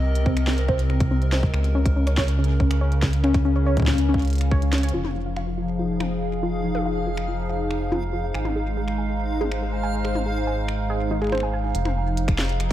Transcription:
Already playing: analog synth bass C2, analog synth pad C3 C4 A#4 D#5
0.15 closed hi-hat
0.26 synth pluck C4, kick
0.37 finger snap, closed hi-hat
0.47 synth pluck C4, snare
0.58 synth pluck C5, closed hi-hat
0.69 synth pluck C5, kick
0.79 closed hi-hat
0.90 synth pluck C4, finger snap
1.00 kick, closed hi-hat
1.11 synth pluck C4
1.22 closed hi-hat
1.32 synth pluck C5, snare
1.43 kick
1.54 analog synth bass C#2, analog synth pad C#3, finger snap
1.64 closed hi-hat
1.75 synth pluck C#4
1.81 analog synth pad C#4
1.86 kick, closed hi-hat
1.96 synth pluck C#4
2.07 synth pluck C#5, finger snap, closed hi-hat
2.17 synth pluck C#5, kick, snare
2.28 closed hi-hat
2.39 synth pluck C#4
2.44 closed hi-hat
2.60 synth pluck C#4, kick
2.71 finger snap, closed hi-hat
2.81 synth pluck C#5
2.89 analog synth pad F5, closed hi-hat
3.03 kick, snare
3.13 closed hi-hat
3.24 synth pluck C#4, finger snap
3.34 kick, closed hi-hat
3.45 synth pluck C#4
3.56 synth pluck C#5
3.66 synth pluck C#5
3.77 kick, closed hi-hat
3.80 kick
3.82 kick
3.85 finger snap, kick, snare
3.88 synth pluck C#4, kick
3.90 kick
3.93 kick
3.96 kick, closed hi-hat
4.09 synth pluck C#4
4.14 kick
4.20 closed hi-hat
4.22 closed hi-hat
4.25 closed hi-hat
4.28 closed hi-hat
4.30 closed hi-hat
4.33 closed hi-hat
4.36 closed hi-hat
4.38 finger snap, closed hi-hat
4.41 closed hi-hat
4.51 synth pluck C#5, kick
4.62 closed hi-hat
4.73 synth pluck C#4, snare, closed hi-hat
4.78 closed hi-hat
4.83 synth pluck C#5, closed hi-hat
4.89 closed hi-hat
4.94 analog synth bass F1, analog synth pad F3, synth pluck F4, synth texture F5
5.05 analog synth pad D#4, high tom
5.15 synth pluck F4
5.26 analog synth pad G#4, synth pluck F5
5.37 synth pluck F5, finger snap
5.58 synth pluck F4
5.79 synth pluck F4
6.00 synth pluck F5, finger snap, high tom
6.43 synth pluck F4
6.64 synth pluck F4
6.75 synth pluck F5, high tom
6.86 synth pluck F5
7.07 synth pluck F4
7.17 finger snap
7.28 synth pluck F4
7.49 synth pluck F5
7.71 finger snap
7.92 synth pluck F4, high tom
8.13 synth pluck F4
8.24 synth pluck F5
8.34 analog synth bass G#1, analog synth pad G#3, synth pluck G#5, finger snap
8.45 high tom
8.56 synth pluck G#4
8.77 synth pluck G#4
8.88 finger snap
8.92 analog synth pad C5
8.98 synth pluck G#5
9.41 synth pluck G#4, high tom
9.52 finger snap
9.62 synth pluck G#4
9.73 synth pluck G#5
9.83 synth pluck G#5
10.05 synth pluck G#4, finger snap
10.15 high tom
10.26 synth pluck G#4
10.47 synth pluck G#5
10.68 finger snap
10.90 synth pluck G#4
11.11 synth pluck D#4
11.22 synth pluck G#4, finger snap
11.24 finger snap
11.27 finger snap
11.30 finger snap
11.32 synth pluck C5, finger snap, high tom
11.35 finger snap
11.38 finger snap
11.40 synth pluck G#5, finger snap
11.54 synth pluck G#5
11.75 analog synth bass F1, analog synth pad F3, closed hi-hat
11.85 finger snap, high tom
11.95 analog synth pad G#4
12.17 closed hi-hat
12.28 finger snap, kick, closed hi-hat
12.39 snare
12.49 closed hi-hat
12.60 finger snap, closed hi-hat

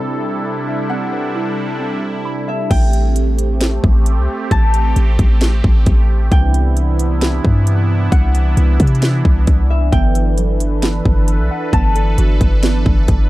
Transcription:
Already playing: analog synth pad C3 G3 D4 E4 A4, synth pluck E4 B4, harp G5
0.00 synth pluck C4
0.45 synth pluck B5
0.68 synth pluck E5
0.90 synth pluck C4, harp F#5
1.13 synth pluck B4
1.35 synth pluck E4
1.80 synth pluck C4
2.25 synth pluck B5
2.48 synth pluck E5, harp E5
2.70 808-style bass A1, analog synth pad A3 C4 G4, harp G5, kick, closed hi-hat, crash
2.93 closed hi-hat
3.16 closed hi-hat
3.39 closed hi-hat
3.61 snare, closed hi-hat
3.84 808-style bass A1, kick
4.06 closed hi-hat
4.17 808-style bass C2
4.51 808-style bass A1, harp A5, kick, closed hi-hat
4.74 closed hi-hat
4.96 808-style bass A1, closed hi-hat
5.19 808-style bass A1, kick, closed hi-hat
5.41 snare, closed hi-hat
5.64 808-style bass A1, kick
5.86 808-style bass A1, kick, closed hi-hat
6.32 808-style bass C2, analog synth pad C3 E3 B3 D4 E4, harp G5, kick, closed hi-hat
6.54 closed hi-hat
6.77 closed hi-hat
6.99 closed hi-hat
7.22 snare, closed hi-hat
7.45 808-style bass G2, kick
7.67 closed hi-hat
8.12 808-style bass C2, harp F#5, kick, closed hi-hat
8.35 closed hi-hat
8.57 808-style bass C2, closed hi-hat
8.80 808-style bass C3, kick, closed hi-hat
8.87 closed hi-hat
8.95 closed hi-hat
9.02 snare, closed hi-hat
9.25 808-style bass C2, kick
9.47 808-style bass C2, kick, closed hi-hat
9.70 harp E5
9.92 808-style bass G1, synth pluck B3, analog synth pad A4 B4, harp G5, kick, closed hi-hat
10.15 synth pluck A4, closed hi-hat
10.38 synth pluck F#3, closed hi-hat
10.60 closed hi-hat
10.82 synth pluck B3, snare, closed hi-hat
11.05 808-style bass G1, kick
11.28 synth pluck A5, closed hi-hat
11.39 808-style bass B1
11.51 synth pluck F#5
11.73 808-style bass G1, synth pluck B3, harp A5, kick, closed hi-hat
11.95 synth pluck A4, closed hi-hat
12.18 808-style bass G1, synth pluck F#4, closed hi-hat
12.41 808-style bass G1, kick, closed hi-hat
12.63 synth pluck B3, snare, closed hi-hat
12.86 808-style bass G1, kick
13.08 808-style bass G1, synth pluck A5, kick, closed hi-hat

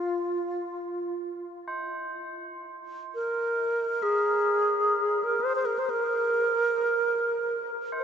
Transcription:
Already playing: alto flute F4
1.68 tubular bells C5
3.15 alto flute A#4
4.02 alto flute G#4, tubular bells A#4
5.24 alto flute A#4
5.40 alto flute C5
5.55 alto flute C5
5.66 alto flute A#4
5.79 alto flute C5
5.90 alto flute A#4
7.92 tubular bells C5
7.99 alto flute C5

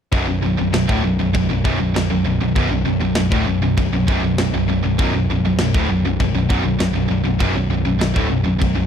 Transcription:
0.12 picked electric bass B0, distorted electric guitar B1 F#2, kick, china
0.27 picked electric bass B0, distorted electric guitar B1 F#2
0.42 picked electric bass B0, distorted electric guitar B1 F#2
0.58 picked electric bass B0, distorted electric guitar B1 F#2
0.72 picked electric bass B0, distorted electric guitar B1 F#2, snare, china
0.88 picked electric bass D1, distorted electric guitar D2 A2, kick
1.04 picked electric bass B0, distorted electric guitar B1 F#2
1.19 picked electric bass B0, distorted electric guitar B1 F#2
1.34 picked electric bass B0, distorted electric guitar B1 F#2, kick, china
1.51 picked electric bass B0, distorted electric guitar B1 F#2
1.64 picked electric bass B0, distorted electric guitar B1 F#2, kick
1.80 picked electric bass B0, distorted electric guitar B1 F#2
1.95 picked electric bass B0, distorted electric guitar B1 F#2, snare, china
2.10 picked electric bass B0, distorted electric guitar B1 F#2
2.25 picked electric bass B0, distorted electric guitar B1 F#2
2.41 picked electric bass B0, distorted electric guitar B1 F#2
2.55 picked electric bass B0, distorted electric guitar B1 F#2, kick, china
2.71 picked electric bass B0, distorted electric guitar B1 F#2
2.85 picked electric bass B0, distorted electric guitar B1 F#2
3.00 picked electric bass B0, distorted electric guitar B1 F#2
3.15 picked electric bass B0, distorted electric guitar B1 F#2, snare, china
3.31 picked electric bass D1, distorted electric guitar D2 A2, kick
3.46 picked electric bass B0, distorted electric guitar B1 F#2
3.61 picked electric bass B0, distorted electric guitar B1 F#2
3.77 picked electric bass B0, distorted electric guitar B1 F#2, kick, china
3.90 picked electric bass B0, distorted electric guitar B1 F#2
4.08 picked electric bass B0, distorted electric guitar B1 F#2, kick
4.21 picked electric bass B0, distorted electric guitar B1 F#2
4.37 picked electric bass B0, distorted electric guitar B1 F#2, snare, china
4.53 picked electric bass B0, distorted electric guitar B1 F#2
4.68 picked electric bass B0, distorted electric guitar B1 F#2
4.83 picked electric bass B0, distorted electric guitar B1 F#2
4.98 picked electric bass B0, distorted electric guitar B1 F#2, kick, china
5.13 picked electric bass B0, distorted electric guitar B1 F#2
5.27 picked electric bass B0, distorted electric guitar B1 F#2
5.41 picked electric bass B0, distorted electric guitar B1 F#2
5.57 picked electric bass B0, snare, china
5.61 distorted electric guitar B1 F#2
5.74 picked electric bass D1, distorted electric guitar D2 A2, kick
5.89 picked electric bass B0, distorted electric guitar B1 F#2
6.03 picked electric bass B0, distorted electric guitar B1 F#2
6.20 picked electric bass B0, distorted electric guitar B1 F#2, kick, china
6.33 picked electric bass B0, distorted electric guitar B1 F#2
6.49 picked electric bass B0, distorted electric guitar B1 F#2, kick
6.63 picked electric bass B0, distorted electric guitar B1 F#2
6.78 picked electric bass B0, distorted electric guitar B1 F#2, snare, china
6.94 picked electric bass B0, distorted electric guitar B1 F#2
7.08 picked electric bass B0, distorted electric guitar B1 F#2
7.24 picked electric bass B0, distorted electric guitar B1 F#2
7.40 picked electric bass B0, distorted electric guitar B1 F#2, kick, china
7.55 picked electric bass B0, distorted electric guitar B1 F#2
7.70 picked electric bass B0, distorted electric guitar B1 F#2
7.84 picked electric bass B0, distorted electric guitar B1 F#2
7.99 picked electric bass B0, distorted electric guitar B1 F#2, snare, china
8.15 picked electric bass D1, distorted electric guitar D2 A2, kick
8.30 picked electric bass B0, distorted electric guitar B1 F#2
8.45 picked electric bass B0, distorted electric guitar B1 F#2
8.60 picked electric bass B0, distorted electric guitar B1 F#2, kick, china
8.75 picked electric bass B0, distorted electric guitar B1 F#2

